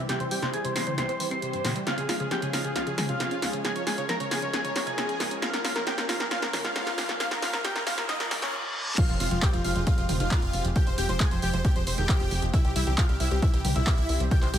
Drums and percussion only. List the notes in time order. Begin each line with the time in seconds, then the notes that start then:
0.09 snare, closed hi-hat
0.20 closed hi-hat
0.31 open hi-hat
0.42 snare, closed hi-hat
0.54 closed hi-hat
0.65 closed hi-hat
0.76 snare, open hi-hat
0.87 closed hi-hat, mid tom
0.98 snare, closed hi-hat
1.09 closed hi-hat
1.20 open hi-hat
1.31 closed hi-hat
1.42 closed hi-hat
1.53 closed hi-hat
1.65 snare, open hi-hat, mid tom
1.76 closed hi-hat
1.87 snare, closed hi-hat
1.98 closed hi-hat
2.09 snare, open hi-hat
2.20 closed hi-hat
2.31 snare, closed hi-hat
2.42 closed hi-hat
2.53 snare, open hi-hat
2.64 closed hi-hat
2.76 snare, closed hi-hat
2.87 closed hi-hat
2.98 snare, open hi-hat, mid tom
3.09 closed hi-hat
3.20 snare, closed hi-hat
3.31 closed hi-hat
3.42 snare, open hi-hat
3.53 closed hi-hat
3.65 snare, closed hi-hat
3.76 closed hi-hat
3.87 snare, open hi-hat
3.98 closed hi-hat
4.09 snare, closed hi-hat
4.20 closed hi-hat
4.31 snare, open hi-hat
4.42 closed hi-hat
4.53 snare, closed hi-hat
4.65 closed hi-hat
4.76 snare, open hi-hat
4.87 closed hi-hat
4.98 snare, closed hi-hat
5.09 closed hi-hat
5.20 snare, open hi-hat
5.31 closed hi-hat
5.42 snare, closed hi-hat
5.54 snare, closed hi-hat
5.65 snare, open hi-hat
5.76 snare, closed hi-hat
5.87 snare, closed hi-hat
5.98 snare, closed hi-hat
6.09 snare, open hi-hat
6.20 snare, closed hi-hat
6.31 snare, closed hi-hat
6.42 snare, closed hi-hat
6.53 snare, open hi-hat, mid tom
6.65 snare, closed hi-hat
6.76 snare, closed hi-hat
6.87 snare, closed hi-hat
6.98 snare, open hi-hat
7.09 snare, closed hi-hat
7.20 snare, closed hi-hat
7.31 snare, closed hi-hat
7.42 snare, open hi-hat
7.53 snare, closed hi-hat
7.65 snare, closed hi-hat
7.76 snare, closed hi-hat
7.87 snare, open hi-hat
7.98 snare, closed hi-hat
8.09 snare, closed hi-hat
8.20 snare, closed hi-hat
8.31 snare, open hi-hat
8.42 snare, closed hi-hat
8.98 kick, closed hi-hat, crash
9.09 closed hi-hat
9.20 open hi-hat
9.31 closed hi-hat
9.42 kick, clap, closed hi-hat
9.53 closed hi-hat
9.64 open hi-hat
9.76 closed hi-hat
9.87 kick, closed hi-hat
9.98 closed hi-hat
10.09 open hi-hat, mid tom
10.20 closed hi-hat
10.31 kick, clap, closed hi-hat
10.42 closed hi-hat
10.53 open hi-hat
10.65 closed hi-hat
10.76 kick, closed hi-hat
10.87 closed hi-hat
10.98 open hi-hat
11.09 closed hi-hat
11.20 kick, clap, closed hi-hat
11.31 closed hi-hat
11.42 open hi-hat
11.53 closed hi-hat
11.65 kick, closed hi-hat
11.76 closed hi-hat
11.87 open hi-hat
11.98 closed hi-hat
12.09 kick, clap, closed hi-hat
12.20 closed hi-hat
12.31 open hi-hat
12.42 closed hi-hat
12.54 kick, closed hi-hat
12.65 closed hi-hat
12.76 open hi-hat
12.87 closed hi-hat
12.98 kick, clap, closed hi-hat
13.09 closed hi-hat
13.20 open hi-hat
13.31 closed hi-hat
13.42 kick, closed hi-hat
13.54 closed hi-hat
13.65 open hi-hat, mid tom
13.76 closed hi-hat
13.87 kick, clap, closed hi-hat
13.98 closed hi-hat
14.09 open hi-hat
14.20 closed hi-hat
14.31 kick, closed hi-hat
14.43 clap, closed hi-hat
14.54 open hi-hat